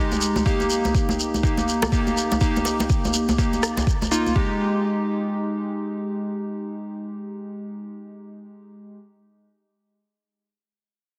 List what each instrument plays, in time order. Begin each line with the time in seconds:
Already playing: synth keys G#3 D#4 G4
0.12 djembe tone, shekere
0.21 shekere
0.36 djembe tone, shekere
0.46 synth keys A#3 D#4 G4, kick, shekere
0.60 djembe tone, shekere
0.70 shekere
0.84 djembe tone, shekere
0.95 kick, shekere
1.09 djembe tone, shekere
1.20 shekere
1.34 djembe tone, shekere
1.43 synth keys A#3 D#4 G4, kick, shekere
1.57 djembe tone, shekere
1.68 shekere
1.82 cross-stick, djembe slap, djembe tone, shekere
1.92 synth keys A#3 D#4 G4, kick, shekere
2.07 djembe tone, shekere
2.17 shekere
2.31 djembe slap, djembe tone, shekere
2.41 synth keys A#3 D#4 G4, kick, shekere
2.56 djembe tone, shekere
2.65 djembe slap, shekere
2.80 djembe slap, djembe tone, shekere
2.89 kick, shekere
3.05 djembe tone, shekere
3.13 shekere
3.29 djembe tone, shekere
3.38 synth keys A#3 D#4 G4, kick, shekere
3.53 djembe tone, shekere
3.63 cross-stick, shekere
3.77 djembe slap, djembe tone, shekere
3.87 kick, shekere
4.02 djembe tone, shekere
4.11 synth keys A#3 D#4 F4, shekere
4.26 djembe tone, shekere
4.36 synth keys G#3 D#4 G4, kick